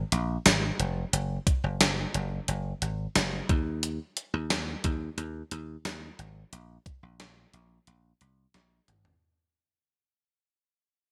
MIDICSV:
0, 0, Header, 1, 3, 480
1, 0, Start_track
1, 0, Tempo, 674157
1, 804, Time_signature, 4, 2, 24, 8
1, 7915, End_track
2, 0, Start_track
2, 0, Title_t, "Slap bass"
2, 0, Program_c, 0, 36
2, 86, Note_on_c, 0, 34, 91
2, 258, Note_off_c, 0, 34, 0
2, 327, Note_on_c, 0, 32, 105
2, 499, Note_off_c, 0, 32, 0
2, 565, Note_on_c, 0, 29, 90
2, 737, Note_off_c, 0, 29, 0
2, 805, Note_on_c, 0, 30, 122
2, 977, Note_off_c, 0, 30, 0
2, 1166, Note_on_c, 0, 30, 91
2, 1251, Note_off_c, 0, 30, 0
2, 1286, Note_on_c, 0, 30, 99
2, 1458, Note_off_c, 0, 30, 0
2, 1527, Note_on_c, 0, 30, 100
2, 1699, Note_off_c, 0, 30, 0
2, 1768, Note_on_c, 0, 30, 101
2, 1939, Note_off_c, 0, 30, 0
2, 2006, Note_on_c, 0, 32, 90
2, 2178, Note_off_c, 0, 32, 0
2, 2249, Note_on_c, 0, 30, 107
2, 2420, Note_off_c, 0, 30, 0
2, 2488, Note_on_c, 0, 39, 92
2, 2832, Note_off_c, 0, 39, 0
2, 3088, Note_on_c, 0, 39, 97
2, 3173, Note_off_c, 0, 39, 0
2, 3205, Note_on_c, 0, 39, 100
2, 3377, Note_off_c, 0, 39, 0
2, 3449, Note_on_c, 0, 39, 95
2, 3620, Note_off_c, 0, 39, 0
2, 3684, Note_on_c, 0, 39, 106
2, 3857, Note_off_c, 0, 39, 0
2, 3927, Note_on_c, 0, 39, 87
2, 4098, Note_off_c, 0, 39, 0
2, 4165, Note_on_c, 0, 39, 99
2, 4337, Note_off_c, 0, 39, 0
2, 4406, Note_on_c, 0, 32, 91
2, 4578, Note_off_c, 0, 32, 0
2, 4646, Note_on_c, 0, 34, 104
2, 4818, Note_off_c, 0, 34, 0
2, 5004, Note_on_c, 0, 34, 82
2, 5091, Note_off_c, 0, 34, 0
2, 5125, Note_on_c, 0, 34, 107
2, 5298, Note_off_c, 0, 34, 0
2, 5365, Note_on_c, 0, 34, 93
2, 5537, Note_off_c, 0, 34, 0
2, 5606, Note_on_c, 0, 34, 109
2, 5778, Note_off_c, 0, 34, 0
2, 5846, Note_on_c, 0, 36, 85
2, 6018, Note_off_c, 0, 36, 0
2, 6084, Note_on_c, 0, 34, 98
2, 6257, Note_off_c, 0, 34, 0
2, 6326, Note_on_c, 0, 32, 76
2, 6498, Note_off_c, 0, 32, 0
2, 7915, End_track
3, 0, Start_track
3, 0, Title_t, "Drums"
3, 86, Note_on_c, 9, 42, 82
3, 158, Note_off_c, 9, 42, 0
3, 325, Note_on_c, 9, 42, 86
3, 325, Note_on_c, 9, 54, 70
3, 326, Note_on_c, 9, 38, 99
3, 396, Note_off_c, 9, 42, 0
3, 397, Note_off_c, 9, 54, 0
3, 398, Note_off_c, 9, 38, 0
3, 566, Note_on_c, 9, 42, 69
3, 638, Note_off_c, 9, 42, 0
3, 807, Note_on_c, 9, 42, 101
3, 878, Note_off_c, 9, 42, 0
3, 1044, Note_on_c, 9, 36, 95
3, 1046, Note_on_c, 9, 42, 81
3, 1116, Note_off_c, 9, 36, 0
3, 1117, Note_off_c, 9, 42, 0
3, 1286, Note_on_c, 9, 38, 99
3, 1286, Note_on_c, 9, 42, 98
3, 1288, Note_on_c, 9, 54, 66
3, 1357, Note_off_c, 9, 42, 0
3, 1358, Note_off_c, 9, 38, 0
3, 1359, Note_off_c, 9, 54, 0
3, 1527, Note_on_c, 9, 42, 75
3, 1598, Note_off_c, 9, 42, 0
3, 1767, Note_on_c, 9, 42, 79
3, 1838, Note_off_c, 9, 42, 0
3, 2007, Note_on_c, 9, 42, 80
3, 2078, Note_off_c, 9, 42, 0
3, 2246, Note_on_c, 9, 42, 87
3, 2246, Note_on_c, 9, 54, 70
3, 2247, Note_on_c, 9, 38, 98
3, 2317, Note_off_c, 9, 42, 0
3, 2318, Note_off_c, 9, 54, 0
3, 2319, Note_off_c, 9, 38, 0
3, 2487, Note_on_c, 9, 36, 107
3, 2488, Note_on_c, 9, 42, 69
3, 2559, Note_off_c, 9, 36, 0
3, 2559, Note_off_c, 9, 42, 0
3, 2727, Note_on_c, 9, 42, 102
3, 2798, Note_off_c, 9, 42, 0
3, 2967, Note_on_c, 9, 42, 84
3, 3038, Note_off_c, 9, 42, 0
3, 3206, Note_on_c, 9, 42, 98
3, 3207, Note_on_c, 9, 38, 102
3, 3209, Note_on_c, 9, 54, 67
3, 3277, Note_off_c, 9, 42, 0
3, 3278, Note_off_c, 9, 38, 0
3, 3280, Note_off_c, 9, 54, 0
3, 3446, Note_on_c, 9, 42, 71
3, 3449, Note_on_c, 9, 36, 92
3, 3517, Note_off_c, 9, 42, 0
3, 3520, Note_off_c, 9, 36, 0
3, 3687, Note_on_c, 9, 42, 77
3, 3758, Note_off_c, 9, 42, 0
3, 3926, Note_on_c, 9, 42, 75
3, 3997, Note_off_c, 9, 42, 0
3, 4166, Note_on_c, 9, 42, 84
3, 4166, Note_on_c, 9, 54, 71
3, 4167, Note_on_c, 9, 38, 102
3, 4237, Note_off_c, 9, 42, 0
3, 4237, Note_off_c, 9, 54, 0
3, 4238, Note_off_c, 9, 38, 0
3, 4408, Note_on_c, 9, 42, 66
3, 4479, Note_off_c, 9, 42, 0
3, 4647, Note_on_c, 9, 42, 104
3, 4718, Note_off_c, 9, 42, 0
3, 4884, Note_on_c, 9, 36, 92
3, 4886, Note_on_c, 9, 42, 83
3, 4955, Note_off_c, 9, 36, 0
3, 4957, Note_off_c, 9, 42, 0
3, 5124, Note_on_c, 9, 42, 95
3, 5125, Note_on_c, 9, 38, 97
3, 5195, Note_off_c, 9, 42, 0
3, 5196, Note_off_c, 9, 38, 0
3, 5365, Note_on_c, 9, 42, 70
3, 5436, Note_off_c, 9, 42, 0
3, 5605, Note_on_c, 9, 42, 74
3, 5676, Note_off_c, 9, 42, 0
3, 5845, Note_on_c, 9, 42, 75
3, 5916, Note_off_c, 9, 42, 0
3, 6082, Note_on_c, 9, 42, 81
3, 6083, Note_on_c, 9, 38, 60
3, 6154, Note_off_c, 9, 42, 0
3, 6155, Note_off_c, 9, 38, 0
3, 6324, Note_on_c, 9, 42, 69
3, 6324, Note_on_c, 9, 45, 91
3, 6395, Note_off_c, 9, 42, 0
3, 6395, Note_off_c, 9, 45, 0
3, 6443, Note_on_c, 9, 43, 94
3, 6514, Note_off_c, 9, 43, 0
3, 7915, End_track
0, 0, End_of_file